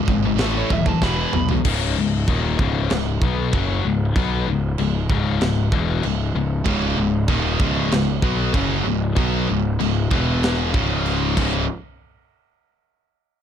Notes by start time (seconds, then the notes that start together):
0.05 G#1 C#2 G#2, kick
0.10 C#2
0.25 C#2 G#2
0.36 A2 E3 A3, snare, china
0.41 A1 A2 E3 A3
0.57 C#5
0.70 D#1 A2 E3 E5, kick
0.86 A2 E3 A5, kick
1.02 E1 E2 B2 E3 B5, kick, snare
1.33 B1 E2 B2, mid tom
1.49 E2 B2, floor tom
1.65 C#1 C#2 G#2 C#3, kick, crash, china
1.98 C#1 C#2 G#2
2.28 D#1 D#2 A#2 D#3, kick, china
2.59 C#1 C#2 G#2 C#3, kick
2.90 C#1 C#2 G#2, snare, china
3.22 B1 B2 F#3 B3, kick
3.53 F#1 F#2 C#3 F#3, kick, china
3.84 C#1 C#2 G#2
4.16 B1 B2 F#3 B3, kick, china
4.48 C#1 C#2 G#2
4.78 C#1 C#2 G#2, china
5.10 C#1 C#2 G#2 C#3, kick
5.41 C#1 C#2 G#2, snare, china
5.72 E1 E2 B2 E3, kick
6.03 C#1 C#2 G#2, china
6.35 C#1 C#2 G#2
6.66 C#1 C#2 G#2 C#3, kick, china
6.97 C#1 C#2 G#2
7.28 D#1 D#2 A#2 D#3, kick, china
7.60 C#1 C#2 G#2 C#3, kick
7.91 C#1 C#2 G#2, snare, china
8.22 B1 B2 F#3 B3, kick
8.54 F#1 F#2 C#3 F#3, kick, china
8.85 C#1 C#2 G#2
9.15 B1 B2 F#3 B3, kick, china
9.48 C#1 C#2 G#2
9.79 C#1 C#2 G#2, china
10.11 E1 E2 B2 E3, kick
10.43 snare, china
10.73 C#1 C#2 G#2 C#3, kick
11.06 china
11.37 C#1 C#2 G#2 C#3, kick, crash